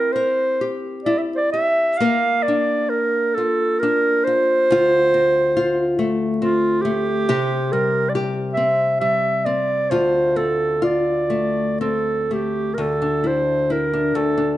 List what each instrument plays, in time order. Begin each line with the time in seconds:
Already playing: nylon-string guitar C4 E4 A#4, clarinet A#4
0.12 nylon-string guitar A#4, clarinet C5
0.61 nylon-string guitar G4
1.04 nylon-string guitar E4, clarinet D5
1.18 clarinet E5
1.35 clarinet C5 D5
1.52 nylon-string guitar G4, clarinet E5
1.98 nylon-string guitar A#3 A#4, clarinet F5
2.43 clarinet D5
2.48 nylon-string guitar D4
2.90 clarinet A#4
3.34 nylon-string guitar F4, clarinet A4
3.79 nylon-string guitar D4, clarinet A#4
4.24 nylon-string guitar F4, clarinet C5
4.71 nylon-string guitar D2 F4
5.14 nylon-string guitar C4
5.57 nylon-string guitar F4
5.99 nylon-string guitar A3
6.38 nylon-string guitar C4, clarinet F4
6.82 nylon-string guitar A3, clarinet G4
7.29 nylon-string guitar C3 G4
7.72 nylon-string guitar G3, clarinet A#4
8.09 clarinet D5
8.15 nylon-string guitar G4
8.53 nylon-string guitar C4, clarinet E5
9.00 nylon-string guitar G3, clarinet E5
9.45 nylon-string guitar C4, clarinet D5
9.90 nylon-string guitar D2 F4, clarinet C5
10.36 nylon-string guitar C4, clarinet A4
10.82 nylon-string guitar F4, clarinet D5
11.30 nylon-string guitar A3
11.81 nylon-string guitar C4, clarinet A4
12.31 nylon-string guitar A3, clarinet G4
12.74 clarinet A#4
12.78 nylon-string guitar D2, clarinet A4
13.02 nylon-string guitar D4
13.24 nylon-string guitar E4, clarinet C5
13.70 nylon-string guitar E4, clarinet A#4
13.93 nylon-string guitar D4
14.15 nylon-string guitar D2, clarinet A4
14.38 nylon-string guitar D4